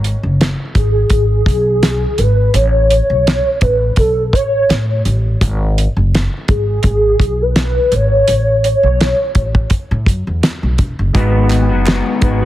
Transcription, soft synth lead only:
0.76 1.09 G#4 medium
1.12 2.20 G#4 medium
2.18 2.55 B4 loud
2.54 2.88 C#5 loud
2.89 3.63 C#5 loud
3.61 3.99 B4 medium
3.98 4.32 A4 medium
4.33 5.01 C#5 medium
6.49 7.43 G#4 medium
7.41 7.95 B4 loud
7.94 8.64 C#5 loud
8.65 9.68 C#5 loud
12.23 12.45 B4 loud

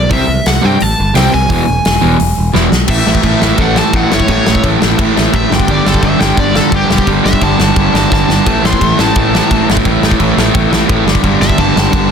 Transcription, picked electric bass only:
0.11 0.23 C2 loud
0.28 0.40 C2 medium
0.46 0.58 C2 medium
0.65 0.76 G2 medium
0.82 0.93 A1 loud
1.00 1.11 G1 loud
1.16 1.28 C2 medium
1.34 1.45 C2 loud
1.50 1.61 E1 loud
1.68 1.80 E1 loud
1.86 1.97 E1 medium
2.03 2.14 E1 medium
2.21 2.32 E1 medium
2.38 2.49 E1 medium
2.55 2.66 E1 medium
2.72 2.84 B1 medium
2.89 3.00 A1 loud
3.07 3.18 A1 medium
3.24 3.34 A1 medium
3.42 3.52 A1 medium
3.59 3.80 A1 medium
3.93 4.04 A1 medium
4.14 4.24 G1 medium
4.29 4.39 A1 loud
4.48 4.58 A1 medium
4.64 4.75 A1 medium
4.83 4.93 A1 medium
4.99 5.09 A1 medium
5.18 5.27 A1 medium
5.34 5.44 A1 medium
5.51 5.61 G1 medium
5.69 5.79 G1 loud
5.87 5.97 G1 medium
6.03 6.13 G1 medium
6.21 6.31 G1 medium
6.37 6.58 G1 loud
6.72 6.83 G1 medium
6.90 7.00 E1 medium
7.07 7.18 G1 loud
7.25 7.35 G1 medium
7.42 7.53 G1 medium
7.60 7.70 G1 medium
7.76 7.87 G1 medium
7.94 8.04 G1 medium
8.12 8.23 G1 medium
8.28 8.39 G1 medium
8.47 8.57 A1 loud
8.64 8.74 A1 medium
8.81 8.92 A1 medium
8.99 9.09 A1 medium
9.17 9.37 A1 medium
9.51 9.62 A1 medium
9.70 9.79 G1 medium
9.85 9.96 A1 loud
10.02 10.13 A1 medium
10.20 10.31 A1 medium
10.37 10.48 A1 medium
10.55 10.65 A1 medium
10.71 10.81 A1 loud
10.90 11.00 A1 medium
11.05 11.16 G1 medium
11.23 11.34 G1 loud
11.40 11.51 G1 loud
11.59 11.69 G1 medium
11.76 11.87 G1 medium
11.93 12.11 G1 medium

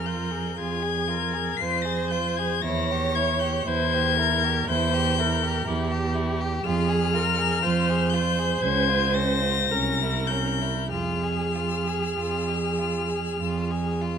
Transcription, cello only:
0.00 0.46 F2 medium
0.59 1.47 F2 medium
1.58 2.50 F2 medium
2.63 3.54 E2 medium
3.65 4.56 E2 medium
4.67 5.55 E2 loud
5.66 6.52 E2 medium
6.64 7.50 F2 medium
7.62 8.51 F2 medium
8.61 9.56 C#2 medium
9.69 10.75 C2 medium
10.89 12.01 F2 medium
12.17 13.25 F2 medium
13.39 14.18 F2 medium

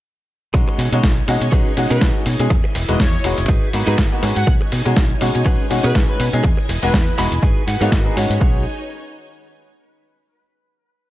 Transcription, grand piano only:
0.54 0.87 G#3 loud
0.54 0.87 C#4 medium
0.54 0.87 D#4 medium
0.54 0.87 F#4 loud
0.93 1.08 G#3 medium
0.93 1.09 C#4 medium
0.93 1.09 D#4 medium
0.93 1.09 F#4 loud
1.28 1.45 G#3 medium
1.28 1.46 C#4 medium
1.28 1.46 D#4 medium
1.28 1.46 F#4 loud
1.53 1.64 G#3 loud
1.53 1.64 C#4 medium
1.53 1.64 D#4 medium
1.53 1.65 F#4 loud
1.77 1.99 G#3 medium
1.77 1.99 C#4 medium
1.77 1.99 D#4 medium
1.77 1.99 F#4 loud
2.01 2.36 G#3 medium
2.01 2.37 C#4 medium
2.01 2.37 D#4 medium
2.01 2.37 F#4 loud
2.39 2.49 G#3 medium
2.39 2.49 C#4 medium
2.39 2.49 D#4 medium
2.39 2.49 G#4 loud
2.88 2.98 G#3 loud
2.88 2.98 B3 medium
2.88 2.98 D#4 medium
2.88 2.98 F#4 loud
3.24 3.36 G#3 medium
3.24 3.36 B3 medium
3.24 3.36 D#4 medium
3.24 3.36 F#4 loud
3.73 3.85 A#3 medium
3.73 3.85 B3 medium
3.73 3.85 D#4 medium
3.73 3.85 F#4 medium
3.87 3.96 A#3 medium
3.87 3.97 B3 medium
3.87 3.97 D#4 medium
3.87 3.97 F#4 loud
4.12 4.21 A#3 medium
4.12 4.21 B3 medium
4.12 4.21 D#4 medium
4.12 4.22 F#4 medium
4.22 4.82 G#3 medium
4.22 4.82 C#4 medium
4.22 4.83 D#4 medium
4.22 4.83 F#4 medium
4.85 5.01 G#3 medium
4.85 5.01 C#4 medium
4.85 5.02 D#4 medium
4.85 5.02 F#4 loud
5.21 5.39 G#3 medium
5.21 5.39 C#4 medium
5.21 5.39 D#4 medium
5.21 5.39 F#4 loud
5.45 5.57 G#3 loud
5.45 5.57 C#4 medium
5.45 5.57 D#4 medium
5.45 5.58 F#4 loud
5.70 5.92 G#3 medium
5.70 5.92 C#4 medium
5.70 5.93 D#4 medium
5.70 5.93 F#4 loud
5.95 6.30 G#3 medium
5.95 6.30 C#4 medium
5.95 6.30 D#4 medium
5.95 6.30 F#4 medium
6.33 6.43 G#3 medium
6.33 6.43 C#4 medium
6.33 6.43 D#4 medium
6.33 6.43 G#4 loud
6.82 6.92 G#3 loud
6.82 6.92 B3 medium
6.82 6.92 D#4 medium
6.82 6.92 F#4 loud
7.18 7.29 G#3 medium
7.18 7.30 B3 medium
7.18 7.30 D#4 medium
7.18 7.30 F#4 loud
7.80 8.02 A#3 loud
7.80 8.02 B3 medium
7.80 8.02 D#4 medium
7.80 8.02 F#4 loud
8.05 8.14 A#3 medium
8.05 8.14 B3 medium
8.05 8.14 D#4 medium
8.05 8.14 G#4 medium
8.16 8.38 G#3 medium
8.16 8.39 C#4 medium
8.16 8.40 D#4 medium
8.16 8.41 F#4 medium
8.40 8.59 G#3 medium
8.40 8.60 C#4 medium
8.40 8.60 D#4 medium
8.40 8.60 F#4 medium

